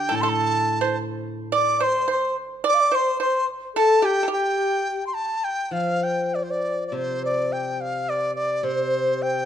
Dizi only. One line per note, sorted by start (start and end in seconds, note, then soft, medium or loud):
0.00 0.17 G5 medium
0.15 0.23 A5 loud
0.21 0.31 C6 medium
0.29 0.98 A5 loud
1.55 1.84 D6 medium
1.83 2.10 C6 medium
2.12 2.36 C6 medium
2.68 2.97 D6 loud
2.95 3.21 C6 medium
3.22 3.45 C6 medium
3.77 4.07 A5 loud
4.05 4.31 G5 medium
4.33 5.04 G5 medium
5.07 5.16 C6 medium
5.15 5.46 A5 medium
5.44 5.74 G5 medium
5.72 6.05 F5 medium
6.03 6.36 G5 medium
6.35 6.45 D5 medium
6.43 6.52 C5 medium
6.51 6.87 D5 medium
6.87 6.96 D5 soft
6.94 7.22 C5 medium
7.25 7.54 D5 medium
7.52 7.82 G5 medium
7.81 8.11 F5 medium
8.09 8.35 D5 medium
8.36 8.65 D5 medium
8.64 9.24 C5 medium
9.22 9.45 G5 medium